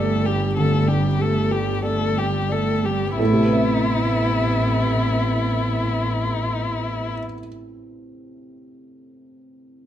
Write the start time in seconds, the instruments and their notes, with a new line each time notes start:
Already playing: double bass G1, felt piano G2 D4 G4 A4 B4 D5 G5, cello A3, violin A4
0.26 cello G3, violin G4, felt piano G4
0.57 felt piano D3, cello A3, violin A4
0.87 cello G3, felt piano D4, violin G4
1.18 cello A3, felt piano G4, violin A4
1.51 cello G3, violin G4, felt piano A4
1.83 cello A3, violin A4, felt piano D5
2.16 cello G3, violin G4, felt piano G5
2.49 cello A3, violin A4, felt piano D5
2.83 cello G3, felt piano G4, violin G4
3.18 double bass A1, felt piano A2 A4, cello B3, violin E4
3.24 felt piano A3
3.32 felt piano C3
3.39 felt piano E4
3.46 felt piano B4
3.53 felt piano E5